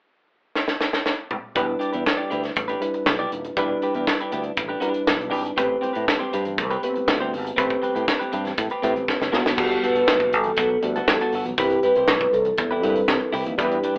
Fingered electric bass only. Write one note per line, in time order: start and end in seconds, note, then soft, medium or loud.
1.56 1.74 E1 loud
1.94 2.03 E2 medium
2.32 2.49 D2 medium
2.57 2.74 A1 medium
3.07 3.24 B1 medium
3.32 3.50 D#1 medium
3.57 3.74 E1 loud
3.95 4.04 E2 medium
4.33 4.50 D2 medium
4.57 4.75 A1 loud
5.08 5.33 B1 medium
5.33 5.50 G#1 medium
5.58 5.75 A1 loud
5.96 6.05 A2 medium
6.34 6.60 G2 medium
6.58 6.76 C2 medium
7.08 7.35 D2 medium
7.33 7.50 G#1 medium
7.58 7.76 A1 medium
7.96 8.04 A2 medium
8.34 8.51 G2 medium
8.58 8.67 A2 loud
8.84 8.92 A2 loud
8.96 9.04 A1 medium
9.21 9.30 F#1 medium
9.33 9.42 G1 loud
9.46 9.55 F#1 medium
9.58 9.75 G1 medium
9.95 10.04 G1 medium
10.08 10.33 F#1 medium
10.33 10.51 G1 medium
10.58 10.75 B1 loud
10.83 11.00 D2 medium
11.08 11.17 G2 loud
11.33 11.42 G1 medium
11.46 11.55 B1 medium
11.58 11.76 C2 loud
11.96 12.05 C2 medium
12.08 12.26 B1 loud
12.33 12.51 C2 loud
12.59 12.84 E2 medium
12.84 13.01 G2 medium
13.08 13.17 C3 loud
13.34 13.42 C2 loud
13.46 13.55 D#2 medium
13.59 13.76 E2 loud